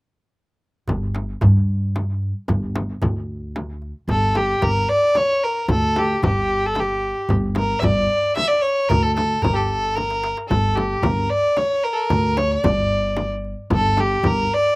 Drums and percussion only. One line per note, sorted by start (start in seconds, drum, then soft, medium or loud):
0.88 darbuka dum medium
0.88 frame drum medium
1.15 darbuka tek medium
1.15 frame drum soft
1.41 darbuka dum medium
1.41 frame drum medium
1.96 darbuka tek medium
1.96 frame drum medium
2.22 darbuka ka soft
2.48 frame drum medium
2.48 darbuka dum medium
2.76 darbuka tek medium
2.76 frame drum medium
3.02 darbuka dum medium
3.02 frame drum medium
3.56 darbuka tek medium
3.56 frame drum medium
3.82 darbuka ka soft
4.09 frame drum medium
4.09 darbuka dum medium
4.35 darbuka tek medium
4.35 frame drum medium
4.62 darbuka dum medium
4.62 frame drum medium
5.15 darbuka tek medium
5.15 frame drum medium
5.43 darbuka ka soft
5.68 frame drum medium
5.68 darbuka dum medium
5.96 darbuka tek medium
5.96 frame drum medium
6.23 darbuka dum medium
6.23 frame drum medium
6.75 darbuka tek medium
6.75 frame drum medium
7.03 darbuka ka soft
7.29 darbuka dum medium
7.29 frame drum medium
7.55 darbuka tek medium
7.55 frame drum medium
7.82 darbuka dum medium
7.82 frame drum medium
8.36 darbuka tek medium
8.36 frame drum medium
8.63 darbuka ka soft
8.90 darbuka dum medium
8.90 frame drum medium
9.17 darbuka tek medium
9.17 frame drum medium
9.42 darbuka dum medium
9.42 frame drum medium
9.97 darbuka tek soft
9.97 frame drum medium
10.10 darbuka ka medium
10.24 darbuka tek medium
10.37 darbuka ka medium
10.51 frame drum medium
10.51 darbuka dum medium
10.77 darbuka tek medium
10.77 frame drum medium
11.03 frame drum medium
11.03 darbuka dum medium
11.57 darbuka tek medium
11.57 frame drum medium
11.84 darbuka ka soft
12.10 frame drum medium
12.10 darbuka dum medium
12.37 darbuka tek medium
12.37 frame drum medium
12.64 darbuka dum medium
12.64 frame drum medium
13.17 darbuka tek medium
13.17 frame drum medium
13.44 darbuka ka soft
13.70 frame drum medium
13.70 darbuka dum medium
13.97 darbuka tek medium
13.97 frame drum medium
14.23 darbuka dum medium
14.23 frame drum medium